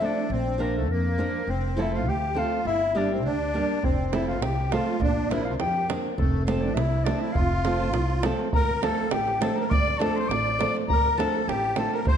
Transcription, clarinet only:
0, 0, Header, 1, 2, 480
1, 0, Start_track
1, 0, Key_signature, -1, "major"
1, 0, Tempo, 587659
1, 248, Time_signature, 2, 2, 24, 8
1, 6973, Key_signature, -1, "minor"
1, 9944, End_track
2, 0, Start_track
2, 0, Title_t, "Clarinet"
2, 0, Program_c, 0, 71
2, 41, Note_on_c, 0, 74, 98
2, 268, Note_on_c, 0, 72, 107
2, 280, Note_off_c, 0, 74, 0
2, 503, Note_on_c, 0, 70, 95
2, 516, Note_off_c, 0, 72, 0
2, 624, Note_off_c, 0, 70, 0
2, 632, Note_on_c, 0, 69, 84
2, 741, Note_on_c, 0, 70, 106
2, 754, Note_off_c, 0, 69, 0
2, 1227, Note_on_c, 0, 72, 124
2, 1239, Note_off_c, 0, 70, 0
2, 1475, Note_on_c, 0, 76, 100
2, 1488, Note_off_c, 0, 72, 0
2, 1599, Note_on_c, 0, 77, 106
2, 1611, Note_off_c, 0, 76, 0
2, 1709, Note_on_c, 0, 79, 127
2, 1721, Note_off_c, 0, 77, 0
2, 1947, Note_on_c, 0, 77, 110
2, 1959, Note_off_c, 0, 79, 0
2, 2176, Note_off_c, 0, 77, 0
2, 2181, Note_on_c, 0, 76, 127
2, 2424, Note_on_c, 0, 74, 108
2, 2436, Note_off_c, 0, 76, 0
2, 2545, Note_off_c, 0, 74, 0
2, 2567, Note_on_c, 0, 72, 86
2, 2681, Note_on_c, 0, 74, 105
2, 2693, Note_off_c, 0, 72, 0
2, 3146, Note_on_c, 0, 72, 110
2, 3158, Note_off_c, 0, 74, 0
2, 3381, Note_on_c, 0, 76, 90
2, 3394, Note_off_c, 0, 72, 0
2, 3487, Note_off_c, 0, 76, 0
2, 3492, Note_on_c, 0, 77, 94
2, 3612, Note_on_c, 0, 79, 118
2, 3624, Note_off_c, 0, 77, 0
2, 3858, Note_on_c, 0, 77, 89
2, 3870, Note_off_c, 0, 79, 0
2, 4089, Note_on_c, 0, 74, 92
2, 4102, Note_off_c, 0, 77, 0
2, 4325, Note_on_c, 0, 76, 81
2, 4337, Note_off_c, 0, 74, 0
2, 4448, Note_off_c, 0, 76, 0
2, 4453, Note_on_c, 0, 77, 77
2, 4505, Note_off_c, 0, 77, 0
2, 4575, Note_on_c, 0, 79, 114
2, 4797, Note_off_c, 0, 79, 0
2, 5045, Note_on_c, 0, 69, 93
2, 5267, Note_off_c, 0, 69, 0
2, 5272, Note_on_c, 0, 72, 79
2, 5401, Note_on_c, 0, 74, 94
2, 5413, Note_off_c, 0, 72, 0
2, 5508, Note_on_c, 0, 76, 114
2, 5520, Note_off_c, 0, 74, 0
2, 5755, Note_on_c, 0, 74, 96
2, 5767, Note_off_c, 0, 76, 0
2, 5883, Note_on_c, 0, 76, 102
2, 5895, Note_off_c, 0, 74, 0
2, 5985, Note_on_c, 0, 77, 127
2, 5997, Note_off_c, 0, 76, 0
2, 6719, Note_off_c, 0, 77, 0
2, 6976, Note_on_c, 0, 82, 127
2, 7217, Note_on_c, 0, 81, 104
2, 7230, Note_off_c, 0, 82, 0
2, 7435, Note_off_c, 0, 81, 0
2, 7440, Note_on_c, 0, 79, 109
2, 7669, Note_off_c, 0, 79, 0
2, 7697, Note_on_c, 0, 81, 87
2, 7807, Note_on_c, 0, 82, 100
2, 7820, Note_off_c, 0, 81, 0
2, 7925, Note_on_c, 0, 86, 123
2, 7938, Note_off_c, 0, 82, 0
2, 8155, Note_on_c, 0, 81, 94
2, 8167, Note_off_c, 0, 86, 0
2, 8300, Note_on_c, 0, 84, 114
2, 8312, Note_off_c, 0, 81, 0
2, 8399, Note_on_c, 0, 86, 127
2, 8411, Note_off_c, 0, 84, 0
2, 8774, Note_off_c, 0, 86, 0
2, 8895, Note_on_c, 0, 82, 127
2, 9132, Note_on_c, 0, 81, 110
2, 9144, Note_off_c, 0, 82, 0
2, 9387, Note_on_c, 0, 79, 112
2, 9399, Note_off_c, 0, 81, 0
2, 9619, Note_off_c, 0, 79, 0
2, 9631, Note_on_c, 0, 81, 90
2, 9741, Note_off_c, 0, 81, 0
2, 9756, Note_on_c, 0, 82, 90
2, 9852, Note_off_c, 0, 82, 0
2, 9870, Note_on_c, 0, 84, 103
2, 9944, Note_off_c, 0, 84, 0
2, 9944, End_track
0, 0, End_of_file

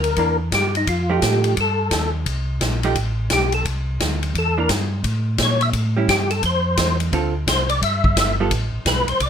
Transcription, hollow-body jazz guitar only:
0, 0, Header, 1, 2, 480
1, 0, Start_track
1, 0, Tempo, 347423
1, 1202, Time_signature, 4, 2, 24, 8
1, 12842, End_track
2, 0, Start_track
2, 0, Title_t, "Hollow-body jazz guitar"
2, 0, Program_c, 0, 26
2, 249, Note_on_c, 0, 52, 51
2, 264, Note_on_c, 0, 58, 52
2, 266, Note_on_c, 0, 62, 53
2, 523, Note_off_c, 0, 52, 0
2, 530, Note_off_c, 0, 58, 0
2, 531, Note_off_c, 0, 62, 0
2, 1513, Note_on_c, 0, 53, 58
2, 1516, Note_on_c, 0, 57, 62
2, 1524, Note_on_c, 0, 63, 60
2, 1529, Note_on_c, 0, 67, 60
2, 2130, Note_off_c, 0, 53, 0
2, 2131, Note_off_c, 0, 57, 0
2, 2136, Note_off_c, 0, 63, 0
2, 2138, Note_off_c, 0, 67, 0
2, 3927, Note_on_c, 0, 53, 66
2, 3929, Note_on_c, 0, 57, 65
2, 3936, Note_on_c, 0, 63, 74
2, 3942, Note_on_c, 0, 67, 79
2, 4075, Note_off_c, 0, 53, 0
2, 4075, Note_off_c, 0, 57, 0
2, 4079, Note_off_c, 0, 63, 0
2, 4082, Note_off_c, 0, 67, 0
2, 6323, Note_on_c, 0, 52, 59
2, 6330, Note_on_c, 0, 58, 66
2, 6340, Note_on_c, 0, 62, 66
2, 6473, Note_off_c, 0, 52, 0
2, 6476, Note_off_c, 0, 58, 0
2, 6481, Note_off_c, 0, 62, 0
2, 8242, Note_on_c, 0, 55, 58
2, 8252, Note_on_c, 0, 61, 63
2, 8265, Note_on_c, 0, 64, 67
2, 8392, Note_off_c, 0, 55, 0
2, 8397, Note_off_c, 0, 61, 0
2, 8404, Note_off_c, 0, 64, 0
2, 9851, Note_on_c, 0, 50, 59
2, 9855, Note_on_c, 0, 60, 71
2, 9862, Note_on_c, 0, 65, 68
2, 9868, Note_on_c, 0, 69, 68
2, 10125, Note_off_c, 0, 50, 0
2, 10127, Note_off_c, 0, 60, 0
2, 10130, Note_off_c, 0, 65, 0
2, 10133, Note_off_c, 0, 69, 0
2, 11609, Note_on_c, 0, 55, 63
2, 11611, Note_on_c, 0, 59, 63
2, 11616, Note_on_c, 0, 65, 69
2, 11625, Note_on_c, 0, 69, 68
2, 11756, Note_off_c, 0, 55, 0
2, 11757, Note_off_c, 0, 59, 0
2, 11759, Note_off_c, 0, 65, 0
2, 11764, Note_off_c, 0, 69, 0
2, 12842, End_track
0, 0, End_of_file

